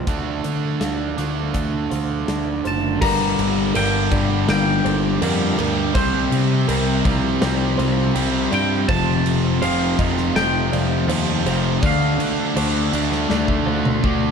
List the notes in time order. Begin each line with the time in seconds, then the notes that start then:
Already playing: C5
0.07 D2 D3 A3 D4, kick, closed hi-hat
0.43 D3 D5, closed hi-hat
0.80 D2 D4 F5, snare, closed hi-hat
1.17 D2 D3 A3 D4, closed hi-hat
1.54 D2 A3 D5, kick, closed hi-hat
1.90 D2 F4 C5, closed hi-hat
2.28 D2 D4, snare, closed hi-hat
2.64 F#1 F4 C5 A5, closed hi-hat
3.01 G1 G2 D3 G3 A#4 A#5, kick, crash
3.39 G1, crash
3.74 G1 G2 D3 G3 D4 A#4 G5, crash
4.11 G1 G2 D3 G3 D5, kick, crash
4.48 G1 G2 D3 G3 A#3 G5, snare, crash
4.84 G1 G4 C5, crash
5.22 F2 G2 D3 G3 D4 A#4, crash
5.58 D2 G2 D3 G3 G4 A#4, crash
5.94 C2 C3 G3 C4 C5, kick, crash
6.32 C3, crash
6.68 C2 C3 G3 C4 A#4, crash
7.05 C2 C3 F3 G3 C4, kick, crash
7.41 C2 C3 G3 C4 C5, snare, crash
7.78 C2 F4 C5, crash
8.14 C2 C3 G3 C4, crash
8.51 G2 C3 G3 C4 F4 D5 G5, crash
8.88 F1 F2 C3 F3 C5 A5, kick, crash
9.26 F1, crash
9.62 F1 F2 C3 F3 C4 C5 F5, crash
9.99 F1 F2 C3 F3 D#5, kick, crash
10.17 snare
10.35 F1 F2 C3 F3 A3 G5, snare, crash
10.72 F1 F4 D5, crash
11.08 D#2 F2 C3 F3 C4 C5, crash
11.45 F1 F2 C3 F3 F4 C5, crash
11.82 D2 D3 A3 D4 D5, kick, crash
11.86 F5
12.19 D3, crash
12.55 D2 D3 A3 D4 C5, crash
12.92 D2 D3 A3 D4, crash
13.12 snare
13.29 D2 D3 A3 D4 D5, snare
13.48 kick
13.66 D2 F4 C5
13.85 mid tom
14.04 D2 D3 A3 D4, kick